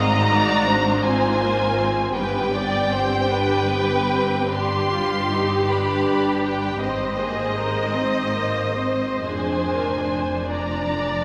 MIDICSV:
0, 0, Header, 1, 6, 480
1, 0, Start_track
1, 0, Tempo, 739827
1, 1394, Time_signature, 12, 3, 24, 8
1, 1886, Tempo, 810811
1, 2846, Tempo, 760456
1, 4766, Tempo, 788436
1, 5246, Tempo, 895522
1, 5726, Tempo, 842697
1, 6859, End_track
2, 0, Start_track
2, 0, Title_t, "Violin section"
2, 0, Program_c, 0, 48
2, 0, Note_on_c, 0, 82, 123
2, 679, Note_on_c, 0, 80, 102
2, 681, Note_off_c, 0, 82, 0
2, 1392, Note_on_c, 0, 79, 115
2, 1393, Note_off_c, 0, 80, 0
2, 2821, Note_off_c, 0, 79, 0
2, 2838, Note_on_c, 0, 84, 107
2, 3564, Note_off_c, 0, 84, 0
2, 3574, Note_on_c, 0, 83, 92
2, 4045, Note_off_c, 0, 83, 0
2, 4050, Note_on_c, 0, 79, 87
2, 4281, Note_off_c, 0, 79, 0
2, 4285, Note_on_c, 0, 75, 105
2, 5726, Note_off_c, 0, 75, 0
2, 5737, Note_on_c, 0, 80, 82
2, 6449, Note_off_c, 0, 80, 0
2, 6449, Note_on_c, 0, 82, 87
2, 6859, Note_off_c, 0, 82, 0
2, 6859, End_track
3, 0, Start_track
3, 0, Title_t, "Violin section"
3, 0, Program_c, 1, 48
3, 0, Note_on_c, 1, 75, 89
3, 211, Note_off_c, 1, 75, 0
3, 224, Note_on_c, 1, 74, 96
3, 454, Note_off_c, 1, 74, 0
3, 454, Note_on_c, 1, 72, 85
3, 1397, Note_off_c, 1, 72, 0
3, 1403, Note_on_c, 1, 71, 73
3, 1639, Note_off_c, 1, 71, 0
3, 1647, Note_on_c, 1, 74, 84
3, 1888, Note_off_c, 1, 74, 0
3, 1904, Note_on_c, 1, 72, 77
3, 2123, Note_off_c, 1, 72, 0
3, 2125, Note_on_c, 1, 71, 97
3, 2846, Note_on_c, 1, 67, 92
3, 2851, Note_off_c, 1, 71, 0
3, 4257, Note_off_c, 1, 67, 0
3, 4291, Note_on_c, 1, 72, 70
3, 4528, Note_off_c, 1, 72, 0
3, 4538, Note_on_c, 1, 68, 73
3, 4768, Note_on_c, 1, 70, 69
3, 4771, Note_off_c, 1, 68, 0
3, 4999, Note_off_c, 1, 70, 0
3, 5002, Note_on_c, 1, 72, 77
3, 6443, Note_on_c, 1, 74, 72
3, 6445, Note_off_c, 1, 72, 0
3, 6859, Note_off_c, 1, 74, 0
3, 6859, End_track
4, 0, Start_track
4, 0, Title_t, "Viola section"
4, 0, Program_c, 2, 48
4, 0, Note_on_c, 2, 60, 90
4, 0, Note_on_c, 2, 66, 78
4, 207, Note_off_c, 2, 60, 0
4, 215, Note_on_c, 2, 63, 79
4, 447, Note_on_c, 2, 62, 83
4, 450, Note_off_c, 2, 63, 0
4, 675, Note_on_c, 2, 65, 78
4, 677, Note_on_c, 2, 60, 77
4, 682, Note_off_c, 2, 62, 0
4, 683, Note_off_c, 2, 66, 0
4, 910, Note_off_c, 2, 60, 0
4, 912, Note_on_c, 2, 58, 79
4, 1146, Note_on_c, 2, 60, 79
4, 1151, Note_off_c, 2, 58, 0
4, 1386, Note_on_c, 2, 59, 88
4, 1387, Note_on_c, 2, 67, 80
4, 1391, Note_off_c, 2, 60, 0
4, 1391, Note_off_c, 2, 65, 0
4, 1629, Note_off_c, 2, 59, 0
4, 1636, Note_on_c, 2, 59, 79
4, 1875, Note_on_c, 2, 60, 76
4, 1879, Note_off_c, 2, 59, 0
4, 2105, Note_on_c, 2, 62, 83
4, 2109, Note_off_c, 2, 60, 0
4, 2347, Note_off_c, 2, 62, 0
4, 2348, Note_on_c, 2, 59, 82
4, 2598, Note_off_c, 2, 59, 0
4, 2603, Note_on_c, 2, 60, 73
4, 2818, Note_off_c, 2, 67, 0
4, 2847, Note_off_c, 2, 60, 0
4, 2851, Note_on_c, 2, 62, 81
4, 2852, Note_on_c, 2, 67, 79
4, 3096, Note_off_c, 2, 62, 0
4, 3099, Note_on_c, 2, 65, 75
4, 3329, Note_off_c, 2, 65, 0
4, 3340, Note_on_c, 2, 63, 70
4, 3557, Note_off_c, 2, 67, 0
4, 3573, Note_off_c, 2, 63, 0
4, 3575, Note_on_c, 2, 62, 71
4, 3575, Note_on_c, 2, 71, 63
4, 4282, Note_on_c, 2, 60, 71
4, 4282, Note_on_c, 2, 72, 71
4, 4285, Note_off_c, 2, 62, 0
4, 4285, Note_off_c, 2, 71, 0
4, 4518, Note_off_c, 2, 60, 0
4, 4519, Note_on_c, 2, 58, 65
4, 4760, Note_on_c, 2, 56, 76
4, 4762, Note_off_c, 2, 58, 0
4, 4990, Note_on_c, 2, 60, 75
4, 4996, Note_off_c, 2, 56, 0
4, 5240, Note_off_c, 2, 60, 0
4, 5247, Note_on_c, 2, 58, 72
4, 5478, Note_on_c, 2, 60, 60
4, 5479, Note_off_c, 2, 58, 0
4, 5717, Note_off_c, 2, 60, 0
4, 5724, Note_off_c, 2, 72, 0
4, 5726, Note_on_c, 2, 62, 59
4, 5726, Note_on_c, 2, 68, 62
4, 5965, Note_off_c, 2, 68, 0
4, 5968, Note_on_c, 2, 70, 61
4, 6201, Note_off_c, 2, 70, 0
4, 6203, Note_on_c, 2, 72, 63
4, 6436, Note_off_c, 2, 72, 0
4, 6441, Note_off_c, 2, 62, 0
4, 6443, Note_on_c, 2, 74, 54
4, 6447, Note_on_c, 2, 62, 60
4, 6859, Note_off_c, 2, 62, 0
4, 6859, Note_off_c, 2, 74, 0
4, 6859, End_track
5, 0, Start_track
5, 0, Title_t, "Cello section"
5, 0, Program_c, 3, 48
5, 0, Note_on_c, 3, 44, 100
5, 1368, Note_off_c, 3, 44, 0
5, 1401, Note_on_c, 3, 43, 79
5, 4260, Note_off_c, 3, 43, 0
5, 4285, Note_on_c, 3, 44, 76
5, 5726, Note_off_c, 3, 44, 0
5, 5728, Note_on_c, 3, 41, 66
5, 6859, Note_off_c, 3, 41, 0
5, 6859, End_track
6, 0, Start_track
6, 0, Title_t, "Double bass section"
6, 0, Program_c, 4, 48
6, 0, Note_on_c, 4, 32, 85
6, 1366, Note_off_c, 4, 32, 0
6, 1391, Note_on_c, 4, 31, 86
6, 4255, Note_off_c, 4, 31, 0
6, 4281, Note_on_c, 4, 32, 68
6, 5724, Note_off_c, 4, 32, 0
6, 5727, Note_on_c, 4, 29, 76
6, 6859, Note_off_c, 4, 29, 0
6, 6859, End_track
0, 0, End_of_file